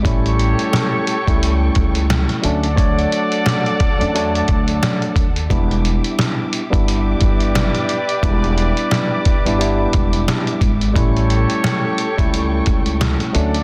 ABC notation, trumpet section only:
X:1
M:4/4
L:1/8
Q:"Swing 16ths" 1/4=88
K:Amix
V:1 name="Trumpet section"
[GAc]6 z [FAd]- | [FAd]6- [FAd] z | z4 [GBd]4- | [GBd]6- [GBd] z |
[GAc]6 z [FAd] |]